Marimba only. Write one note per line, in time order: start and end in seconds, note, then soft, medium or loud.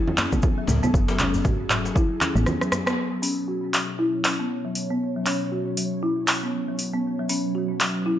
0.18 0.31 C#4 medium
0.32 0.38 B3 medium
0.58 0.68 F#3 medium
0.83 0.93 B3 loud
1.09 1.19 F#3 medium
1.19 1.27 C#4 loud
1.45 1.59 F#4 medium
1.70 1.84 F#3 medium
1.95 2.04 E4 loud
2.21 2.34 C#4 medium
2.36 2.42 B3 medium
2.61 2.71 F#3 medium
2.87 2.96 B3 loud
3.12 3.22 F#3 medium
3.22 3.31 C#4 loud
3.48 3.62 F#4 medium
3.74 3.88 F#3 medium
3.99 4.07 E4 loud
4.24 4.38 C#4 medium
4.39 4.45 B3 medium
4.65 4.75 F#3 medium
4.90 5.00 B3 medium
5.16 5.26 F#3 medium
5.27 5.34 C#4 loud
5.52 5.66 F#4 medium
5.77 5.91 F#3 medium
6.03 6.11 E4 loud
6.28 6.41 C#4 medium
6.43 6.49 B3 medium
6.68 6.78 F#3 medium
6.94 7.03 B3 medium
7.19 7.29 F#3 medium
7.30 7.38 C#4 loud
7.55 7.69 F#4 medium
7.80 7.95 F#3 medium
8.06 8.14 E4 medium